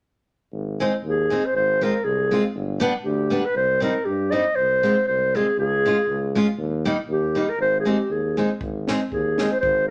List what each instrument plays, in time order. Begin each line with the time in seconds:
0.52 tuba G#1
0.80 steel-string acoustic guitar G#3 C4 D#4
1.03 tuba D#2
1.08 clarinet G#4
1.30 steel-string acoustic guitar G#3 C4 D#4
1.45 clarinet C5
1.54 tuba G#1, clarinet C5
1.81 steel-string acoustic guitar G#3 C4 F4, clarinet A#4
2.04 tuba C2, clarinet G#4
2.31 steel-string acoustic guitar G#3 C4 F4
2.54 tuba G1
2.80 steel-string acoustic guitar G3 B3 D4
3.05 tuba D2, clarinet G4
3.30 steel-string acoustic guitar G3 B3 D4
3.45 clarinet B4
3.55 tuba C2, clarinet C5
3.80 steel-string acoustic guitar G3 C4 D#4, clarinet A#4
4.05 tuba G2, clarinet G4
4.31 steel-string acoustic guitar G3 C4 D#4, clarinet D#5
4.55 tuba C2, clarinet C5
4.83 steel-string acoustic guitar G#3 C4 F4
5.07 tuba C2, clarinet C5
5.35 steel-string acoustic guitar G#3 C4 F4, clarinet G#4
5.58 tuba C#2, clarinet G#4
5.86 steel-string acoustic guitar G#3 C#4 F4
6.07 tuba C#2
6.35 steel-string acoustic guitar G#3 C#4 F4
6.58 tuba D#2
6.85 steel-string acoustic guitar G3 A#3 D#4
7.08 tuba D#2
7.12 clarinet G4
7.35 steel-string acoustic guitar G3 A#3 D#4
7.49 clarinet A#4
7.58 tuba G#1, clarinet C5
7.80 clarinet G#4
7.85 steel-string acoustic guitar G#3 C4 D#4, clarinet G4
8.09 tuba D#2, clarinet G#4
8.37 steel-string acoustic guitar G#3 C4 D#4
8.61 tuba G#1, kick
8.88 steel-string acoustic guitar G#3 C4 D#4, snare
9.12 tuba D#2, clarinet G#4, kick
9.38 steel-string acoustic guitar G#3 C4 D#4, snare
9.51 clarinet C5
9.60 tuba G#1, clarinet C5, kick